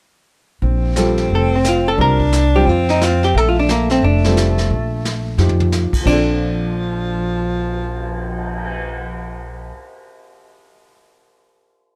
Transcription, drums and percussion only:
0.62 brush sweep, kick
0.96 snare, hi-hat pedal
1.18 snare
1.29 brush sweep, kick
1.65 snare, hi-hat pedal
1.98 brush sweep, kick
2.20 kick
2.33 snare, hi-hat pedal
2.67 brush sweep, kick
2.89 snare
3.01 snare, hi-hat pedal
3.23 snare
3.35 brush sweep, kick
3.69 snare, hi-hat pedal
3.90 snare
4.02 brush sweep, kick
4.24 snare
4.37 snare, hi-hat pedal
4.58 snare
4.70 brush sweep, kick
5.05 snare, hi-hat pedal
5.38 snare
5.49 floor tom
5.60 floor tom
5.72 snare, hi-hat pedal
5.93 kick, crash
6.06 kick, crash
6.27 cymbal swell

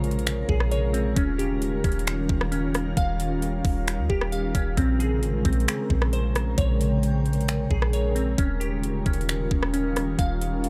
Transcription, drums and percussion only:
0.04 closed hi-hat
0.11 closed hi-hat
0.19 closed hi-hat
0.27 finger snap, closed hi-hat
0.49 kick
0.60 cross-stick
0.71 closed hi-hat
0.94 closed hi-hat
1.16 kick, closed hi-hat
1.39 closed hi-hat
1.62 closed hi-hat
1.84 kick, closed hi-hat
1.92 closed hi-hat
1.99 closed hi-hat
2.07 finger snap, closed hi-hat
2.29 kick
2.41 cross-stick
2.52 closed hi-hat
2.74 cross-stick, closed hi-hat
2.97 kick, closed hi-hat
3.20 closed hi-hat
3.42 closed hi-hat
3.65 kick, open hi-hat
3.88 finger snap, closed hi-hat
4.10 kick
4.21 cross-stick
4.32 closed hi-hat
4.55 kick, closed hi-hat
4.77 kick, closed hi-hat
5.00 closed hi-hat
5.23 closed hi-hat
5.45 kick, closed hi-hat
5.53 closed hi-hat
5.60 closed hi-hat
5.68 finger snap, closed hi-hat
5.90 kick
6.02 cross-stick
6.13 closed hi-hat
6.35 cross-stick, closed hi-hat
6.58 kick, closed hi-hat
6.81 closed hi-hat
7.03 closed hi-hat
7.26 closed hi-hat
7.33 closed hi-hat
7.41 closed hi-hat
7.48 finger snap, closed hi-hat
7.71 kick
7.82 cross-stick
7.93 closed hi-hat
8.16 closed hi-hat
8.38 kick, closed hi-hat
8.61 closed hi-hat
8.83 closed hi-hat
9.06 kick, closed hi-hat
9.13 closed hi-hat
9.21 closed hi-hat
9.29 finger snap, closed hi-hat
9.51 kick
9.63 cross-stick
9.74 closed hi-hat
9.96 cross-stick, closed hi-hat
10.19 kick, closed hi-hat
10.41 closed hi-hat
10.64 closed hi-hat

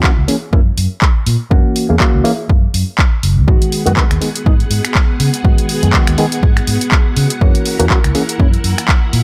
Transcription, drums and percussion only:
0.03 kick, clap
0.28 open hi-hat
0.53 kick
0.78 open hi-hat
1.02 kick, clap
1.27 open hi-hat
1.51 kick
1.76 open hi-hat
2.00 kick, clap
2.25 open hi-hat
2.49 kick
2.74 open hi-hat
2.99 kick, clap
3.23 open hi-hat
3.48 kick
3.62 closed hi-hat
3.72 open hi-hat
3.86 closed hi-hat
3.97 kick, clap
4.11 finger snap, closed hi-hat
4.22 open hi-hat
4.36 closed hi-hat
4.46 kick
4.60 closed hi-hat
4.71 open hi-hat
4.85 finger snap, closed hi-hat
4.95 kick, clap
5.20 open hi-hat
5.34 closed hi-hat
5.45 kick
5.58 closed hi-hat
5.69 open hi-hat
5.83 closed hi-hat
5.93 kick, clap
6.07 finger snap, closed hi-hat
6.18 open hi-hat
6.32 closed hi-hat
6.43 kick
6.57 finger snap, closed hi-hat
6.67 open hi-hat
6.81 closed hi-hat
6.92 kick, clap
7.17 open hi-hat
7.30 closed hi-hat
7.41 kick
7.55 closed hi-hat
7.66 open hi-hat
7.80 closed hi-hat
7.90 kick, clap
8.04 finger snap, closed hi-hat
8.15 open hi-hat
8.29 closed hi-hat
8.40 kick
8.54 closed hi-hat
8.64 open hi-hat
8.78 finger snap, closed hi-hat
8.88 kick, clap
9.13 open hi-hat

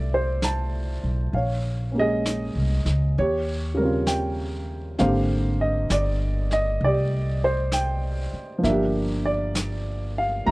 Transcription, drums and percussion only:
0.42 brush sweep, snare, hi-hat pedal
1.34 brush sweep
2.26 brush sweep, snare, hi-hat pedal
2.86 snare
3.16 brush sweep
4.07 brush sweep, snare, hi-hat pedal
4.99 brush sweep, snare
5.90 brush sweep, snare, hi-hat pedal
6.51 snare
6.81 brush sweep
7.72 brush sweep, snare, hi-hat pedal
8.64 brush sweep, snare
9.55 brush sweep, snare, hi-hat pedal
10.47 brush sweep

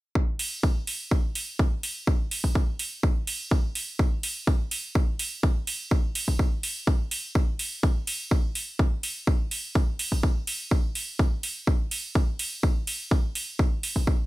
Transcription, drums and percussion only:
0.15 kick
0.39 open hi-hat
0.63 kick
0.87 open hi-hat
1.11 kick
1.35 open hi-hat
1.59 kick
1.83 open hi-hat
2.07 kick
2.31 open hi-hat
2.44 kick
2.55 kick
2.79 open hi-hat
3.03 kick
3.27 open hi-hat
3.51 kick
3.75 open hi-hat
3.99 kick
4.23 open hi-hat
4.47 kick
4.71 open hi-hat
4.95 kick
5.19 open hi-hat
5.43 kick
5.67 open hi-hat
5.91 kick
6.15 open hi-hat
6.28 kick
6.39 kick
6.63 open hi-hat
6.87 kick
7.11 open hi-hat
7.35 kick
7.59 open hi-hat
7.83 kick
8.07 open hi-hat
8.31 kick
8.55 open hi-hat
8.79 kick
9.03 open hi-hat
9.27 kick
9.51 open hi-hat
9.75 kick
9.99 open hi-hat
10.12 kick
10.23 kick
10.47 open hi-hat
10.71 kick
10.95 open hi-hat
11.19 kick
11.43 open hi-hat
11.67 kick
11.91 open hi-hat
12.15 kick
12.39 open hi-hat
12.63 kick
12.87 open hi-hat
13.11 kick
13.35 open hi-hat
13.59 kick
13.83 open hi-hat
13.96 kick
14.07 kick

